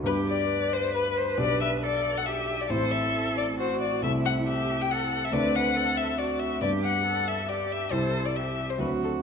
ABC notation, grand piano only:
X:1
M:3/4
L:1/8
Q:1/4=137
K:G
V:1 name="Grand piano"
[G,,B,DG]6 | [B,,,B,DG]6 | [A,,,CE]6 | [C,,A,CE]6 |
[D,,A,CD]6 | [G,,G,B,D]6 | [C,,G,CE]4 [D,,F,CD]2 |]